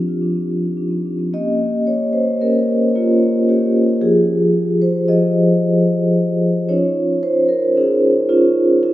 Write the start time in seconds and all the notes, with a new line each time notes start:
Already playing: F3 C4 D4 F4 G4
0.08 F4
0.22 D4
0.36 C4
0.51 D4
0.63 D#4
0.77 D4
0.90 C4
1.06 D4
1.19 C4
1.33 A#3 C#4 G4 D#5
1.87 C#5
2.13 C5
2.41 A#3 C#4 G4 A#4
2.95 A#3 C#4 F4 G4
3.49 A#3 C#4 G4
4.01 F3 F4 G4 G#4
4.82 C5
5.08 F3 F4 G4 D#5
6.69 C#4 D#4 F4 C#5
7.23 C5
7.48 A#4
7.77 C#4 D#4 F4 G#4
8.29 C#4 D#4 F4
8.83 C#4 D#4 F4